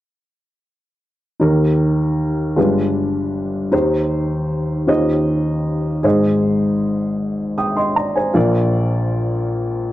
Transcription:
0, 0, Header, 1, 2, 480
1, 0, Start_track
1, 0, Key_signature, -3, "major"
1, 0, Tempo, 771208
1, 879, Time_signature, 6, 3, 24, 8
1, 6178, End_track
2, 0, Start_track
2, 0, Title_t, "Upright piano"
2, 0, Program_c, 0, 0
2, 869, Note_on_c, 0, 63, 48
2, 877, Note_on_c, 0, 39, 53
2, 877, Note_on_c, 0, 67, 48
2, 878, Note_on_c, 0, 51, 48
2, 880, Note_on_c, 0, 70, 58
2, 1009, Control_c, 0, 64, 127
2, 1574, Note_off_c, 0, 39, 0
2, 1575, Note_off_c, 0, 51, 0
2, 1594, Note_off_c, 0, 67, 0
2, 1594, Note_on_c, 0, 56, 47
2, 1595, Note_on_c, 0, 62, 43
2, 1596, Note_off_c, 0, 63, 0
2, 1596, Note_on_c, 0, 65, 47
2, 1597, Note_on_c, 0, 43, 47
2, 1599, Note_on_c, 0, 31, 45
2, 1601, Note_off_c, 0, 70, 0
2, 1603, Note_on_c, 0, 71, 50
2, 1604, Note_on_c, 0, 67, 46
2, 1609, Control_c, 0, 64, 0
2, 1720, Control_c, 0, 64, 127
2, 2295, Note_off_c, 0, 43, 0
2, 2296, Note_off_c, 0, 31, 0
2, 2310, Note_off_c, 0, 67, 0
2, 2313, Note_on_c, 0, 63, 52
2, 2318, Note_off_c, 0, 56, 0
2, 2319, Note_off_c, 0, 62, 0
2, 2319, Note_off_c, 0, 65, 0
2, 2320, Note_on_c, 0, 67, 47
2, 2321, Note_on_c, 0, 39, 50
2, 2321, Note_on_c, 0, 51, 57
2, 2321, Note_on_c, 0, 72, 57
2, 2323, Note_off_c, 0, 71, 0
2, 2328, Control_c, 0, 64, 0
2, 2437, Control_c, 0, 64, 127
2, 3017, Note_off_c, 0, 39, 0
2, 3017, Note_off_c, 0, 51, 0
2, 3029, Note_off_c, 0, 72, 0
2, 3030, Note_off_c, 0, 67, 0
2, 3031, Note_on_c, 0, 61, 45
2, 3034, Note_on_c, 0, 51, 47
2, 3034, Note_on_c, 0, 65, 43
2, 3035, Note_on_c, 0, 39, 47
2, 3038, Note_off_c, 0, 63, 0
2, 3038, Note_on_c, 0, 72, 46
2, 3039, Note_on_c, 0, 67, 42
2, 3041, Note_on_c, 0, 75, 60
2, 3051, Control_c, 0, 64, 0
2, 3154, Control_c, 0, 64, 127
2, 3734, Note_off_c, 0, 39, 0
2, 3734, Note_off_c, 0, 51, 0
2, 3751, Note_off_c, 0, 72, 0
2, 3754, Note_on_c, 0, 68, 56
2, 3757, Note_off_c, 0, 61, 0
2, 3758, Note_off_c, 0, 65, 0
2, 3760, Note_on_c, 0, 32, 52
2, 3761, Note_off_c, 0, 67, 0
2, 3761, Note_on_c, 0, 44, 55
2, 3761, Note_on_c, 0, 72, 54
2, 3762, Note_off_c, 0, 75, 0
2, 3771, Control_c, 0, 64, 0
2, 3773, Note_on_c, 0, 75, 55
2, 3868, Control_c, 0, 64, 127
2, 4702, Note_off_c, 0, 72, 0
2, 4708, Note_off_c, 0, 75, 0
2, 4716, Note_on_c, 0, 87, 43
2, 4721, Note_on_c, 0, 79, 34
2, 4833, Note_off_c, 0, 87, 0
2, 4833, Note_on_c, 0, 84, 48
2, 4835, Note_off_c, 0, 79, 0
2, 4837, Note_on_c, 0, 75, 40
2, 4951, Note_off_c, 0, 84, 0
2, 4953, Note_off_c, 0, 75, 0
2, 4956, Note_on_c, 0, 82, 42
2, 4961, Note_on_c, 0, 74, 37
2, 5073, Note_off_c, 0, 82, 0
2, 5076, Note_off_c, 0, 74, 0
2, 5076, Note_on_c, 0, 80, 44
2, 5083, Note_on_c, 0, 72, 40
2, 5173, Note_off_c, 0, 68, 0
2, 5176, Note_off_c, 0, 32, 0
2, 5177, Note_off_c, 0, 44, 0
2, 5188, Note_on_c, 0, 65, 58
2, 5192, Note_on_c, 0, 46, 59
2, 5194, Note_on_c, 0, 70, 50
2, 5195, Note_on_c, 0, 34, 60
2, 5202, Note_on_c, 0, 74, 60
2, 5209, Control_c, 0, 64, 0
2, 5304, Control_c, 0, 64, 127
2, 5307, Note_off_c, 0, 80, 0
2, 5310, Note_off_c, 0, 72, 0
2, 6178, Note_off_c, 0, 34, 0
2, 6178, Note_off_c, 0, 46, 0
2, 6178, Note_off_c, 0, 65, 0
2, 6178, Note_off_c, 0, 70, 0
2, 6178, Note_off_c, 0, 74, 0
2, 6178, End_track
0, 0, End_of_file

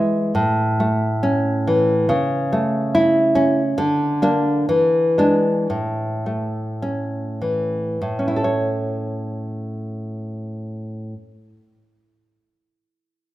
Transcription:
0, 0, Header, 1, 2, 480
1, 0, Start_track
1, 0, Key_signature, 3, "major"
1, 0, Tempo, 878477
1, 196, Time_signature, 2, 2, 24, 8
1, 1151, Tempo, 841515
1, 2111, Tempo, 899550
1, 2591, Tempo, 1008403
1, 3071, Tempo, 1147228
1, 4511, Tempo, 1113173
1, 6324, End_track
2, 0, Start_track
2, 0, Title_t, "Nylon-string guitar"
2, 0, Program_c, 0, 24
2, 0, Note_on_c, 0, 52, 73
2, 0, Note_on_c, 0, 56, 54
2, 0, Note_on_c, 0, 64, 69
2, 93, Note_off_c, 0, 64, 0
2, 171, Note_off_c, 0, 52, 0
2, 190, Note_on_c, 0, 45, 65
2, 196, Note_off_c, 0, 56, 0
2, 437, Note_on_c, 0, 57, 55
2, 672, Note_on_c, 0, 61, 69
2, 915, Note_on_c, 0, 52, 58
2, 1055, Note_off_c, 0, 61, 0
2, 1126, Note_off_c, 0, 45, 0
2, 1141, Note_on_c, 0, 49, 70
2, 1150, Note_off_c, 0, 52, 0
2, 1151, Note_off_c, 0, 57, 0
2, 1390, Note_on_c, 0, 57, 54
2, 1630, Note_on_c, 0, 64, 86
2, 1862, Note_on_c, 0, 61, 67
2, 2011, Note_off_c, 0, 64, 0
2, 2082, Note_off_c, 0, 49, 0
2, 2104, Note_on_c, 0, 50, 76
2, 2107, Note_off_c, 0, 61, 0
2, 2109, Note_off_c, 0, 57, 0
2, 2341, Note_on_c, 0, 58, 56
2, 2344, Note_on_c, 0, 62, 82
2, 2567, Note_off_c, 0, 58, 0
2, 2568, Note_off_c, 0, 62, 0
2, 2573, Note_off_c, 0, 50, 0
2, 2590, Note_on_c, 0, 52, 66
2, 2825, Note_on_c, 0, 56, 46
2, 2829, Note_on_c, 0, 62, 69
2, 3053, Note_off_c, 0, 56, 0
2, 3055, Note_off_c, 0, 62, 0
2, 3056, Note_off_c, 0, 52, 0
2, 3071, Note_on_c, 0, 45, 49
2, 3307, Note_on_c, 0, 57, 39
2, 3542, Note_on_c, 0, 61, 47
2, 3790, Note_on_c, 0, 52, 37
2, 3941, Note_off_c, 0, 61, 0
2, 4021, Note_off_c, 0, 45, 0
2, 4037, Note_off_c, 0, 52, 0
2, 4039, Note_off_c, 0, 57, 0
2, 4041, Note_on_c, 0, 45, 49
2, 4114, Note_on_c, 0, 61, 41
2, 4150, Note_on_c, 0, 64, 41
2, 4186, Note_on_c, 0, 69, 41
2, 4218, Note_off_c, 0, 64, 0
2, 4219, Note_on_c, 0, 73, 40
2, 5371, Note_off_c, 0, 45, 0
2, 5446, Note_off_c, 0, 61, 0
2, 5521, Note_off_c, 0, 69, 0
2, 5555, Note_off_c, 0, 73, 0
2, 6324, End_track
0, 0, End_of_file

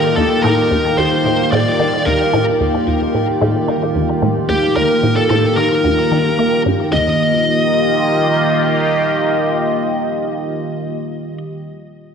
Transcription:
0, 0, Header, 1, 5, 480
1, 0, Start_track
1, 0, Tempo, 540541
1, 389, Time_signature, 4, 2, 24, 8
1, 10787, End_track
2, 0, Start_track
2, 0, Title_t, "Lead electric guitar"
2, 0, Program_c, 0, 29
2, 0, Note_on_c, 0, 70, 100
2, 139, Note_off_c, 0, 70, 0
2, 143, Note_on_c, 0, 69, 94
2, 377, Note_off_c, 0, 69, 0
2, 381, Note_on_c, 0, 70, 101
2, 865, Note_on_c, 0, 72, 96
2, 879, Note_off_c, 0, 70, 0
2, 1313, Note_off_c, 0, 72, 0
2, 1347, Note_on_c, 0, 74, 101
2, 1828, Note_on_c, 0, 70, 88
2, 1843, Note_off_c, 0, 74, 0
2, 2163, Note_off_c, 0, 70, 0
2, 3989, Note_on_c, 0, 67, 93
2, 4226, Note_off_c, 0, 67, 0
2, 4229, Note_on_c, 0, 70, 121
2, 4580, Note_off_c, 0, 70, 0
2, 4584, Note_on_c, 0, 69, 99
2, 4695, Note_off_c, 0, 69, 0
2, 4705, Note_on_c, 0, 69, 106
2, 4930, Note_off_c, 0, 69, 0
2, 4942, Note_on_c, 0, 70, 100
2, 5870, Note_off_c, 0, 70, 0
2, 6151, Note_on_c, 0, 75, 89
2, 10103, Note_off_c, 0, 75, 0
2, 10787, End_track
3, 0, Start_track
3, 0, Title_t, "Synth texture"
3, 0, Program_c, 1, 99
3, 0, Note_on_c, 1, 63, 84
3, 6158, Note_off_c, 1, 63, 0
3, 10787, End_track
4, 0, Start_track
4, 0, Title_t, "Analog synth pad"
4, 0, Program_c, 2, 89
4, 0, Note_on_c, 2, 51, 83
4, 0, Note_on_c, 2, 58, 61
4, 0, Note_on_c, 2, 65, 74
4, 0, Note_on_c, 2, 67, 67
4, 6134, Note_off_c, 2, 51, 0
4, 6145, Note_on_c, 2, 51, 76
4, 6149, Note_off_c, 2, 65, 0
4, 6149, Note_off_c, 2, 67, 0
4, 6151, Note_off_c, 2, 58, 0
4, 6214, Note_on_c, 2, 58, 77
4, 6285, Note_on_c, 2, 65, 77
4, 6357, Note_on_c, 2, 67, 76
4, 10097, Note_off_c, 2, 51, 0
4, 10166, Note_off_c, 2, 58, 0
4, 10237, Note_off_c, 2, 65, 0
4, 10309, Note_off_c, 2, 67, 0
4, 10787, End_track
5, 0, Start_track
5, 0, Title_t, "Synth arpeggio sound"
5, 0, Program_c, 3, 84
5, 152, Note_on_c, 3, 39, 77
5, 272, Note_off_c, 3, 39, 0
5, 391, Note_on_c, 3, 45, 103
5, 511, Note_off_c, 3, 45, 0
5, 631, Note_on_c, 3, 39, 78
5, 813, Note_off_c, 3, 39, 0
5, 871, Note_on_c, 3, 39, 77
5, 943, Note_off_c, 3, 39, 0
5, 1114, Note_on_c, 3, 45, 76
5, 1294, Note_off_c, 3, 45, 0
5, 1353, Note_on_c, 3, 45, 98
5, 1473, Note_off_c, 3, 45, 0
5, 1594, Note_on_c, 3, 51, 76
5, 1664, Note_off_c, 3, 51, 0
5, 1833, Note_on_c, 3, 39, 76
5, 1952, Note_off_c, 3, 39, 0
5, 2073, Note_on_c, 3, 45, 101
5, 2193, Note_off_c, 3, 45, 0
5, 2313, Note_on_c, 3, 39, 80
5, 2493, Note_off_c, 3, 39, 0
5, 2552, Note_on_c, 3, 39, 75
5, 2624, Note_off_c, 3, 39, 0
5, 2791, Note_on_c, 3, 45, 78
5, 2972, Note_off_c, 3, 45, 0
5, 3032, Note_on_c, 3, 45, 105
5, 3152, Note_off_c, 3, 45, 0
5, 3271, Note_on_c, 3, 51, 84
5, 3343, Note_off_c, 3, 51, 0
5, 3512, Note_on_c, 3, 39, 78
5, 3632, Note_off_c, 3, 39, 0
5, 3750, Note_on_c, 3, 45, 98
5, 3871, Note_off_c, 3, 45, 0
5, 3991, Note_on_c, 3, 39, 78
5, 4172, Note_off_c, 3, 39, 0
5, 4230, Note_on_c, 3, 39, 82
5, 4302, Note_off_c, 3, 39, 0
5, 4468, Note_on_c, 3, 45, 78
5, 4651, Note_off_c, 3, 45, 0
5, 4709, Note_on_c, 3, 45, 101
5, 4830, Note_off_c, 3, 45, 0
5, 4949, Note_on_c, 3, 51, 76
5, 5022, Note_off_c, 3, 51, 0
5, 5188, Note_on_c, 3, 39, 85
5, 5310, Note_off_c, 3, 39, 0
5, 5431, Note_on_c, 3, 51, 78
5, 5551, Note_off_c, 3, 51, 0
5, 5673, Note_on_c, 3, 58, 74
5, 5744, Note_off_c, 3, 58, 0
5, 5912, Note_on_c, 3, 43, 79
5, 5984, Note_off_c, 3, 43, 0
5, 6151, Note_on_c, 3, 39, 90
5, 6373, Note_off_c, 3, 39, 0
5, 10787, End_track
0, 0, End_of_file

